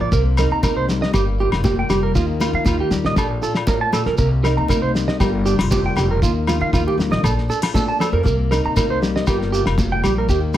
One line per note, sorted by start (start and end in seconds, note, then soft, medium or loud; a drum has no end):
0.00 0.11 A#1 medium
0.00 0.13 F3 medium
0.00 0.10 F4 medium
0.00 0.09 D5 medium
0.12 0.49 C2 medium
0.12 1.14 C3 medium
0.12 0.64 A#3 medium
0.12 0.22 A#4 medium
0.12 kick loud
0.12 muted conga soft
0.12 shekere medium
0.37 1.12 D#4 medium
0.37 0.48 A#4 medium
0.37 snare medium
0.37 low agogo medium
0.37 shekere medium
0.51 0.76 D#2 medium
0.51 0.60 A#5 medium
0.63 1.13 A#3 medium
0.63 0.73 A#4 medium
0.63 kick medium
0.63 snare medium
0.63 high conga medium
0.63 low agogo medium
0.63 shekere medium
0.76 1.00 C2 loud
0.76 0.85 C5 medium
0.89 1.11 G3 medium
0.89 snare medium
0.89 muted conga soft
0.89 shekere medium
1.02 1.10 D#5 medium
1.02 snare medium
1.13 1.50 G1 loud
1.13 2.15 G2 medium
1.13 1.66 A#3 medium
1.13 1.23 G4 medium
1.13 kick medium
1.13 snare medium
1.13 muted conga soft
1.13 low agogo medium
1.13 shekere medium
1.39 2.13 F4 medium
1.39 1.49 G4 medium
1.39 muted conga soft
1.52 1.88 F1 medium
1.52 snare medium
1.52 low agogo medium
1.64 2.17 A#3 medium
1.64 1.74 G4 medium
1.64 kick loud
1.64 snare medium
1.64 high conga medium
1.64 shekere medium
1.79 1.87 G5 medium
1.89 2.14 F1 medium
1.89 2.13 G3 medium
1.89 1.99 G4 medium
1.89 snare medium
1.89 low agogo medium
1.89 shekere medium
2.03 2.11 A#4 medium
2.15 2.52 D#2 loud
2.15 3.14 D#3 medium
2.15 2.67 A#3 medium
2.15 2.25 F4 medium
2.15 kick medium
2.15 muted conga soft
2.15 shekere medium
2.40 2.51 F4 medium
2.40 3.15 F4 medium
2.40 snare medium
2.40 high conga medium
2.40 low conga medium
2.40 low agogo medium
2.40 shekere medium
2.53 2.65 D#3 medium
2.53 2.63 F5 medium
2.65 2.78 D#2 loud
2.65 3.17 A#3 medium
2.65 2.76 F4 medium
2.65 kick medium
2.65 snare medium
2.65 high conga medium
2.65 low agogo medium
2.65 shekere medium
2.80 2.89 G4 medium
2.91 3.04 D#2 medium
2.91 3.14 G3 medium
2.91 snare medium
2.91 muted conga soft
2.91 shekere medium
3.05 3.15 A#1 medium
3.05 3.14 D#5 medium
3.05 snare medium
3.16 3.41 A#1 medium
3.16 3.68 A#2 medium
3.16 4.16 D4 medium
3.16 3.27 A4 medium
3.16 kick loud
3.16 snare medium
3.16 muted conga soft
3.16 low agogo medium
3.16 shekere medium
3.42 4.16 F4 medium
3.42 3.52 A4 medium
3.42 muted conga soft
3.42 shekere medium
3.55 snare medium
3.55 low agogo medium
3.67 3.93 A2 medium
3.67 3.78 A#4 medium
3.67 kick medium
3.67 snare medium
3.67 high conga medium
3.67 shekere medium
3.81 3.90 A5 medium
3.92 4.19 A#2 medium
3.92 4.03 A4 medium
3.92 snare medium
3.92 high conga medium
3.92 low agogo medium
3.92 shekere medium
4.06 4.18 A#1 medium
4.06 4.15 A#4 medium
4.06 snare soft
4.18 4.55 C2 loud
4.18 5.20 C3 medium
4.18 4.70 A#3 medium
4.18 4.28 A#4 medium
4.18 kick medium
4.18 muted conga soft
4.18 shekere medium
4.44 5.18 D#4 medium
4.44 4.53 A#4 medium
4.44 snare medium
4.44 low agogo medium
4.44 shekere medium
4.57 4.82 D#2 medium
4.57 4.66 A#5 medium
4.68 5.21 A#3 medium
4.68 4.79 A#4 medium
4.68 kick medium
4.68 snare medium
4.68 high conga medium
4.68 low agogo medium
4.68 shekere medium
4.82 5.07 C2 medium
4.82 4.91 C5 medium
4.95 5.18 G3 medium
4.95 snare medium
4.95 muted conga soft
4.95 shekere medium
5.08 5.16 D#5 medium
5.08 snare medium
5.20 5.57 G1 loud
5.20 6.22 G2 medium
5.20 6.19 G3 medium
5.20 6.24 A#3 medium
5.20 5.46 F4 medium
5.20 5.29 G4 medium
5.20 8.26 A#4 medium
5.20 kick medium
5.20 snare medium
5.20 muted conga soft
5.20 low agogo medium
5.20 shekere medium
5.46 5.61 D4 medium
5.46 5.55 G4 medium
5.46 muted conga soft
5.46 shekere medium
5.59 5.94 F1 medium
5.59 6.23 F4 medium
5.59 snare medium
5.59 low agogo medium
5.71 5.96 C3 medium
5.71 5.81 G4 medium
5.71 kick medium
5.71 snare medium
5.71 high conga loud
5.71 shekere loud
5.86 5.94 G5 medium
5.96 6.20 F1 medium
5.96 6.22 D3 medium
5.96 6.06 G4 medium
5.96 snare medium
5.96 low agogo medium
5.96 shekere medium
6.11 6.19 A#4 medium
6.22 6.59 D#2 loud
6.22 7.22 D#3 medium
6.22 6.74 A#3 medium
6.22 6.32 F4 medium
6.22 kick medium
6.22 muted conga soft
6.22 shekere medium
6.47 6.57 F4 medium
6.47 7.22 F4 medium
6.47 snare medium
6.47 high conga medium
6.47 low conga medium
6.47 low agogo medium
6.47 shekere medium
6.60 6.72 D#3 medium
6.60 6.70 F5 medium
6.73 6.86 D#2 loud
6.73 7.23 A#3 medium
6.73 6.83 F4 medium
6.73 kick medium
6.73 snare medium
6.73 high conga soft
6.73 low agogo medium
6.73 shekere medium
6.87 6.95 G4 medium
6.87 high conga medium
6.97 7.10 D#2 medium
6.97 7.21 G3 medium
6.97 snare medium
6.97 low conga medium
6.97 shekere medium
7.11 7.23 A#1 medium
7.11 7.20 D#5 medium
7.11 snare medium
7.11 low conga medium
7.23 7.48 A#1 medium
7.23 8.23 A#2 medium
7.23 7.48 D4 medium
7.23 7.34 A4 medium
7.23 kick loud
7.23 snare medium
7.23 muted conga soft
7.23 low agogo medium
7.23 shekere medium
7.38 snare soft
7.49 7.62 D4 medium
7.49 7.59 A4 medium
7.49 muted conga soft
7.49 shekere medium
7.62 8.25 F4 soft
7.62 snare medium
7.62 low agogo medium
7.74 8.22 D4 medium
7.74 7.84 A4 medium
7.74 kick medium
7.74 snare medium
7.74 high conga loud
7.74 shekere medium
7.88 7.97 A5 medium
7.99 8.25 F3 medium
7.99 8.09 A4 medium
7.99 snare medium
7.99 high conga medium
7.99 low agogo medium
7.99 shekere medium
8.12 8.24 F2 medium
8.12 8.22 A#4 medium
8.23 8.62 C2 medium
8.23 9.26 C3 medium
8.23 8.77 A#3 medium
8.23 8.35 A#4 medium
8.23 kick medium
8.23 muted conga soft
8.23 shekere medium
8.51 9.25 D#4 medium
8.51 8.60 A#4 medium
8.51 snare medium
8.51 low agogo medium
8.51 shekere medium
8.65 8.91 D#2 medium
8.65 8.74 A#5 medium
8.76 9.28 A#3 medium
8.76 8.86 A#4 medium
8.76 kick medium
8.76 snare medium
8.76 high conga medium
8.76 low agogo medium
8.76 shekere medium
8.90 9.14 C2 medium
8.90 8.99 C5 medium
9.02 9.24 G3 medium
9.02 snare medium
9.02 muted conga soft
9.02 shekere medium
9.16 9.24 D#5 medium
9.16 snare medium
9.27 9.64 G1 loud
9.27 10.29 G2 medium
9.27 10.03 G3 medium
9.27 9.80 A#3 medium
9.27 9.52 F4 medium
9.27 9.37 G4 medium
9.27 10.57 A#4 medium
9.27 kick medium
9.27 snare medium
9.27 low agogo medium
9.27 shekere medium
9.42 snare soft
9.52 10.26 F4 medium
9.52 9.62 G4 medium
9.52 muted conga soft
9.52 shekere medium
9.66 10.01 F1 medium
9.66 snare medium
9.66 low agogo medium
9.78 10.31 A#3 medium
9.78 kick loud
9.78 snare medium
9.78 high conga loud
9.78 shekere medium
9.92 10.00 G5 medium
10.04 10.27 A#1 medium
10.04 10.27 G3 medium
10.04 10.13 G4 medium
10.04 snare medium
10.04 low agogo medium
10.04 shekere medium
10.18 10.26 A#4 medium
10.29 10.57 D#2 loud
10.29 10.57 D#3 medium
10.29 10.57 A#3 medium
10.29 10.39 G4 medium
10.29 kick medium
10.29 muted conga soft
10.29 shekere medium
10.54 shekere medium